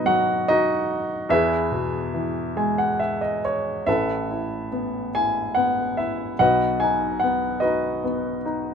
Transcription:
Already playing: B2 F#3 B3 D#4 D#5
0.04 F#3 F#4 F#5
0.48 D#4 F#4 D#5
1.29 E2 E4 G#4 B4 E5
1.72 B2
2.14 E3
2.56 G#3 G#5
2.78 F#5
3.00 E5
3.21 D#5
3.45 C#5
3.87 A1 A2 A4 B4 E5
4.31 E4
4.72 B3
5.15 E4 G#5
5.55 B3 F#5
5.97 E4 E5
6.39 B1 B2 B4 D#5 F#5
6.80 D#4 G#5
7.20 B3 F#5
7.60 F#4 B4 D#5
7.64 D#4
8.04 B3
8.45 D#4

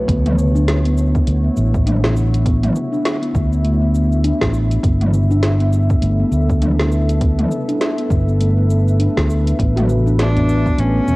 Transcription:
Already playing: B3 A4 C#5
0.08 D2 D3 B3, kick, closed hi-hat, cabasa
0.26 closed hi-hat, mid tom
0.35 E4, cabasa
0.55 D4, cabasa
0.68 snare, closed hi-hat, cabasa
0.78 F#4
0.85 B3 E5, closed hi-hat
0.98 cabasa
1.15 B3, kick, cabasa
1.27 D2 A3, closed hi-hat, cabasa
1.44 B3
1.57 A1 B3, cabasa
1.74 kick, cabasa
1.86 D4, closed hi-hat, mid tom, cabasa
2.04 snare
2.16 cabasa
2.34 closed hi-hat, cabasa
2.45 B3, kick, closed hi-hat, cabasa
2.63 closed hi-hat, mid tom
2.76 cabasa
2.92 D4, cabasa
3.05 snare, closed hi-hat, cabasa
3.22 B3, closed hi-hat
3.35 D2, kick, cabasa
3.52 B3, cabasa
3.65 A3, closed hi-hat, cabasa
3.82 B3
3.95 B3, cabasa
4.12 cabasa
4.24 D4, closed hi-hat, cabasa
4.41 A1, kick, snare
4.54 cabasa
4.71 closed hi-hat, cabasa
4.83 G1 G3 B3, kick, closed hi-hat, cabasa
5.01 closed hi-hat, mid tom
5.14 cabasa
5.31 D4, cabasa
5.43 snare, closed hi-hat, cabasa
5.60 B3, closed hi-hat
5.68 A4
5.73 cabasa
5.90 B3, kick, cabasa
6.02 G1 A3, closed hi-hat, cabasa
6.20 B3
6.25 B4
6.32 D2 B3, cabasa
6.50 kick, cabasa
6.62 D4, closed hi-hat, mid tom, cabasa
6.79 snare
6.92 cabasa
7.09 closed hi-hat, cabasa
7.21 B3, kick, closed hi-hat, cabasa
7.39 closed hi-hat, mid tom
7.51 cabasa
7.69 D4, closed hi-hat, cabasa
7.81 snare, closed hi-hat, cabasa
7.98 B3, closed hi-hat
8.10 G1, kick, cabasa
8.28 B3, cabasa
8.40 A3, closed hi-hat, cabasa
8.57 B3
8.70 B3, cabasa
8.88 cabasa
8.99 D4, closed hi-hat, cabasa
9.17 D2, kick, snare
9.30 cabasa
9.47 closed hi-hat, cabasa
9.59 A1 A2 B3, kick, closed hi-hat, cabasa
9.76 F#4, closed hi-hat, mid tom
9.85 G3, cabasa
9.90 A3
10.06 D4, cabasa
10.19 D4, snare, closed hi-hat, cabasa
10.36 B3, closed hi-hat, udu
10.49 cabasa
10.59 E5
10.66 B3, kick, cabasa
10.78 A1 A3 C#4, closed hi-hat, cabasa
10.95 B3
11.08 E1 B3, cabasa

